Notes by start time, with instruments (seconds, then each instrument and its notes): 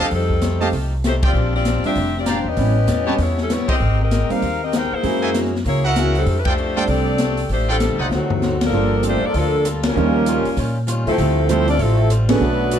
0.02 saxophone section G3 C4 D4 A4
0.11 upright bass F2, steel-string acoustic guitar F3 A3 D#4 G4, saxophone section C4 D#4, kick, open hi-hat
0.15 saxophone section G3 A4
0.30 kick
0.41 steel-string acoustic guitar F3 A3 D#4 G4, snare, closed hi-hat
0.60 grand piano A3 C4 D#4 G4, trumpet section G4 D#5 F5 A5, open hi-hat
0.72 upright bass C2, steel-string acoustic guitar F3 A3 D#4 G4, kick, open hi-hat
1.04 steel-string acoustic guitar F3 A3 D#4 G4, saxophone section A3 D#4 G4 C5, snare, closed hi-hat
1.22 saxophone section C4 F4 G4 D5, trumpet section G4 C5 D5 G5, kick, ride
1.33 upright bass A#1, steel-string acoustic guitar A#2 G3 C4 D4
1.55 saxophone section C4 F4 G4 D5
1.65 steel-string acoustic guitar A#2 G3 C4 D4, snare, closed hi-hat
1.83 grand piano G3 C4 D4 F4, saxophone section D4 G4 C5 E5, muted upright bass stroke, open hi-hat
1.95 upright bass F1, steel-string acoustic guitar A#2 G3 C4 D4, kick, open hi-hat
2.18 saxophone section C4 F4 G4 D5
2.26 steel-string acoustic guitar A#2 G3 C4 D4, saxophone section D4 G4 C5 F5, trumpet section G4 C5 D5 A#5, snare, closed hi-hat
2.44 upright bass E2, saxophone section C#4 G4 D#5
2.49 saxophone section B4
2.57 upright bass A1, steel-string acoustic guitar A2 G3 B3 C#4, grand piano G3 B3 C#4 E4, kick, open hi-hat
2.87 upright bass E2, steel-string acoustic guitar A2 G3 B3 C#4, snare, closed hi-hat
3.06 grand piano G3 B3 C#4 G4, trumpet section G4 B4 C#5 A5
3.18 upright bass E2, steel-string acoustic guitar A2 G3 B3 C#4, saxophone section B3 E4 G4 C#5, kick, open hi-hat
3.38 saxophone section G3 C#4 E4 A4, snare
3.50 steel-string acoustic guitar A2 G3 B3 C#4, saxophone section B3 E4 G4 C#5, snare, closed hi-hat
3.68 trumpet section G4 A#4 C5 D#5, saxophone section A#4 D#5, kick, ride
3.72 saxophone section C4 G4
3.80 upright bass G#1, steel-string acoustic guitar G#3 C4 G4 A#4
4.01 saxophone section C4 G4 A#4 D#5
4.11 steel-string acoustic guitar G#3 C4 G4 A#4, snare, closed hi-hat
4.30 grand piano G3 A#3 C4 D#4, saxophone section D#4 A#4 C5 F5, muted upright bass stroke, open hi-hat
4.42 upright bass D#2, steel-string acoustic guitar G#3 C4 G4 A#4, kick, open hi-hat
4.64 saxophone section C4 G4 A#4 D#5
4.72 steel-string acoustic guitar G#3 C4 G4 A#4, saxophone section D#4 A#4 C5 G5, snare, closed hi-hat
4.92 saxophone section A#3 E4 G#4 C5, muted upright bass stroke
5.03 upright bass F#2, steel-string acoustic guitar F#3 A#3 E4 G#4, grand piano G#3 A#3 C#4 E4, kick, open hi-hat
5.22 trumpet section F#4 A#4 E5 G#5
5.34 steel-string acoustic guitar F#3 A#3 E4 G#4, snare, closed hi-hat
5.45 snare
5.56 snare
5.64 upright bass C#2, steel-string acoustic guitar F#3 A#3 E4 G#4, saxophone section A#3 E4 C#5, kick, open hi-hat
5.69 saxophone section G#4
5.84 saxophone section E4 A#4 C#5 F#5, trumpet section F#4 A#4 E5 F#5
5.96 saxophone section E3 A#3 C#4 F#4, steel-string acoustic guitar F#3 A#3 E4 G#4, snare, closed hi-hat
6.15 saxophone section G3 C4 D4 A4, open hi-hat
6.26 upright bass F2, steel-string acoustic guitar F3 A3 D4 G4, kick, open hi-hat
6.39 saxophone section B4
6.45 saxophone section A3 D4 G4 C5, trumpet section F4 A4 D5 G5, kick, ride
6.58 steel-string acoustic guitar F3 A3 D4 G4
6.76 grand piano G3 A3 C4 D4, trumpet section F4 A4 D5 G5
6.87 upright bass C2, steel-string acoustic guitar F3 A3 D4 G4, saxophone section C4 G4 A4 D5, kick, open hi-hat
7.18 steel-string acoustic guitar F3 A3 D4 G4, snare, closed hi-hat
7.37 open hi-hat
7.49 upright bass A1, steel-string acoustic guitar F3 A3 D4 G4, saxophone section A3 D4 G4 C5, kick, open hi-hat
7.68 saxophone section G3 C4 D4 A4, trumpet section F4 A4 D5 G5
7.80 steel-string acoustic guitar F3 A3 D4 G4, snare, closed hi-hat
7.90 upright bass D2
7.99 upright bass C2, trumpet section D#4 C5 D5 F#5
8.03 saxophone section A3 C4 D4 F4
8.10 upright bass D2, trombone section A2 C3 F#3, steel-string acoustic guitar D3 F#3 C4 D#4, saxophone section D#3 A3 C4, snare
8.14 saxophone section F#4
8.30 floor tom
8.42 steel-string acoustic guitar D3 F#3 C4 D#4, snare
8.61 trombone section D3 F3 A#3, snare, ride
8.66 saxophone section F3 D4 A4 A#4
8.72 upright bass G1, grand piano F3 G3 A#3 D4, steel-string acoustic guitar G3 A#3 F4 A4
9.03 steel-string acoustic guitar G3 A#3 F4 A4, trombone section C4, closed hi-hat
9.07 saxophone section A3 D4 F4 C5
9.22 trombone section F3 A#3 D4, muted upright bass stroke
9.27 saxophone section A#3 F4 A4 D5
9.34 upright bass D2, trombone section D3 F3 A4, steel-string acoustic guitar G3 A#3 F4 A4, saxophone section A#3, kick, open hi-hat
9.38 saxophone section F3 D4 A4
9.65 steel-string acoustic guitar G3 A#3 F4 A4, cross-stick, closed hi-hat
9.83 trombone section C#3 G3 A#3, snare, ride
9.88 saxophone section G3 C#4 F4 A#4
9.96 upright bass D#2, steel-string acoustic guitar D#3 G3 C#4 F4, grand piano F3 G3 A#3 C#4 D#4
10.26 steel-string acoustic guitar D#3 G3 C#4 F4, closed hi-hat
10.45 muted upright bass stroke, open hi-hat
10.57 upright bass A#2, steel-string acoustic guitar D#3 G3 C#4 F4, kick, open hi-hat
10.87 steel-string acoustic guitar D#3 G3 C#4 F4, cross-stick, closed hi-hat
11.05 upright bass D#2, trombone section C3 F3 A3, saxophone section F3 C4 E4 A4, open hi-hat
11.18 upright bass D2, steel-string acoustic guitar D3 G3 C4 F4, kick, open hi-hat
11.48 steel-string acoustic guitar D3 G3 C4 F4, trombone section F3 A3 C4, grand piano F3 G3 A3 C4 E4, saxophone section A3 E4 F4 C5, closed hi-hat
11.67 trombone section F3 A3 D4, saxophone section C4 F4 A4 D5, open hi-hat
11.78 upright bass A1, trombone section C3 F3 A3, steel-string acoustic guitar D3 G3 C4 F4, saxophone section F3 C4 E4 A4, kick, open hi-hat
12.10 steel-string acoustic guitar D3 G3 C4 F4, cross-stick, closed hi-hat
12.27 trombone section D3 F#3 B3, grand piano D3 A3 B3 C#4 G#4, saxophone section A3 D4 F#4 B4, snare, ride
12.40 upright bass B1, steel-string acoustic guitar B2 A3 D4 F#4
12.71 steel-string acoustic guitar B2 A3 D4 F#4, closed hi-hat